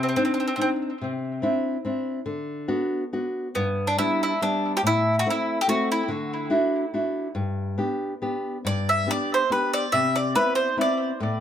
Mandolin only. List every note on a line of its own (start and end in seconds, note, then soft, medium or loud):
0.03 0.07 C4 soft
0.09 0.15 C4 soft
0.16 0.24 C4 medium
0.25 0.32 C4 soft
0.34 0.39 C4 soft
0.40 0.46 C4 soft
0.48 0.54 C4 soft
0.56 0.60 C4 soft
0.62 0.69 C4 medium
3.55 3.86 B3 medium
3.87 3.97 D4 medium
3.98 4.21 E4 medium
4.23 4.41 E4 medium
4.43 4.72 D4 medium
4.77 4.81 G4 medium
4.87 5.15 E4 medium
5.19 5.27 F#4 medium
5.30 5.58 E4 medium
5.61 5.68 G4 medium
5.69 5.88 F#4 medium
5.92 6.09 E4 medium
8.67 8.87 D5 medium
8.89 9.10 E5 medium
9.11 9.30 D5 loud
9.34 9.52 C5 medium
9.52 9.72 B4 medium
9.73 9.95 D5 medium
9.92 10.16 E5 medium
10.16 10.35 D5 medium
10.36 10.55 B4 medium
10.55 10.76 C5 medium
10.81 11.10 D5 medium